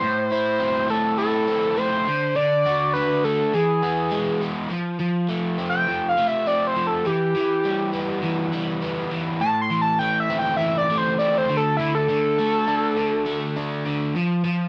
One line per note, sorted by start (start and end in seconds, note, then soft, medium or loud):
0.00 1.48 A2 medium
0.00 0.31 C5 loud
0.31 1.17 E4 medium
0.31 0.92 C5 loud
0.59 1.47 C4 medium
0.90 1.77 A3 medium
0.90 1.17 A4 medium
1.18 2.06 E4 medium
1.18 1.78 A4 loud
1.48 2.07 C4 medium
1.77 2.07 A3 medium
1.77 2.37 C5 loud
2.08 2.35 D3 medium
2.36 3.53 D3 medium
2.36 2.93 D5 loud
2.66 3.53 F#4 medium
2.93 3.53 D4 medium
2.93 3.26 B4 loud
3.24 3.54 A3 medium
3.24 3.56 A4 medium
3.54 4.69 E3 medium
3.54 4.42 G#4 medium
3.83 4.41 B3 medium
4.11 4.70 G#3 medium
4.42 4.71 B3 medium
4.70 4.98 F3 medium
5.00 5.87 F3 medium
5.29 6.16 A3 medium
5.58 6.45 C4 medium
5.69 6.07 G5 loud
5.88 6.75 F3 medium
6.09 6.27 F5 medium
6.18 7.06 A3 medium
6.27 6.46 E5 medium
6.46 7.06 C4 medium
6.46 6.66 D5 medium
6.67 6.86 C5 medium
6.76 7.05 F3 medium
6.87 7.06 A4 medium
7.05 7.34 E3 medium
7.05 8.21 G4 loud
7.35 8.21 E3 medium
7.65 8.51 G3 medium
7.93 8.81 B3 medium
8.23 9.10 E3 medium
8.53 9.41 G3 medium
8.82 9.42 B3 medium
9.12 9.41 E3 medium
9.40 10.89 A2 medium
9.40 9.60 A5 loud
9.62 9.81 C6 medium
9.70 10.58 E3 medium
9.82 9.98 A5 medium
9.99 10.90 A3 medium
9.99 10.19 G5 loud
10.20 10.38 E5 loud
10.30 11.19 C4 medium
10.39 10.56 G5 medium
10.57 11.48 E3 medium
10.57 10.77 E5 medium
10.78 10.97 D5 medium
10.91 12.39 A3 medium
10.98 11.17 C5 medium
11.19 11.49 C4 medium
11.19 11.37 D5 medium
11.38 11.56 C5 loud
11.49 11.78 D3 medium
11.57 11.76 A4 loud
11.77 12.08 D3 medium
11.77 11.94 E4 medium
11.95 13.69 A4 loud
12.09 12.96 D3 medium
12.39 13.25 A3 medium
12.68 13.55 D4 medium
12.97 13.85 D3 medium
13.26 14.14 A3 medium
13.56 14.15 D4 medium
13.86 14.15 D3 medium
14.16 14.43 F3 medium
14.45 14.69 F3 medium